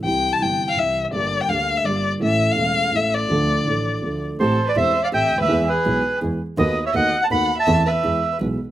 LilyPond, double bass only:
\new Staff \with { instrumentName = "Double bass" } { \clef bass \time 3/4 \key d \minor \tempo 4 = 165 c,4 g,,4 c,4 | g,,4 d,4 g,,4 | a,,4 e,,4 a,,4 | d,4 a,,4 d,4 |
\key a \minor a,,8 r8 e,,8 r8 a,,8 d,8 | e,8 r8 b,,8 r8 e,8 r8 | dis,8 r8 dis,8 r8 dis,8 r8 | e,8 r8 e,8 r8 b,,8 r8 | }